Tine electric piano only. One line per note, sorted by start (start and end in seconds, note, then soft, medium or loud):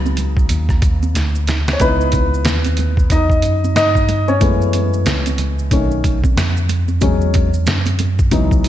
0.00 0.50 C#2 medium
0.50 1.12 D#2 loud
1.15 1.64 D2 medium
1.67 1.72 D2 soft
1.80 2.42 C#2 loud
2.45 3.07 D#2 medium
3.10 3.41 E2 medium
3.42 3.74 F#2 medium
3.76 4.38 G2 medium
4.41 5.03 F#2 loud
5.06 5.68 C#2 loud
5.71 6.33 B1 loud
6.36 6.99 F2 medium
7.02 7.64 E2 loud
7.67 8.33 F#2 loud
8.32 8.69 C#2 loud